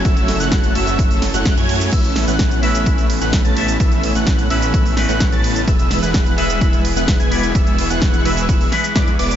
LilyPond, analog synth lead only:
\new Staff \with { instrumentName = "Analog synth lead" } { \time 4/4 \key a \major \tempo 4 = 128 e'''8. fis'''8. e'''4 r16 fis'''8 gis'''8. | e'''8. fis'''8. e'''4 r16 fis'''8 a'''8. | e'''8. fis'''8. e'''4 r16 fis'''8 a'''8. | e'''8. fis'''8. e'''4 r16 fis'''8 gis'''8. |
e'''8. fis'''8. e'''4 r8 d'''16 r16 d'''8 | }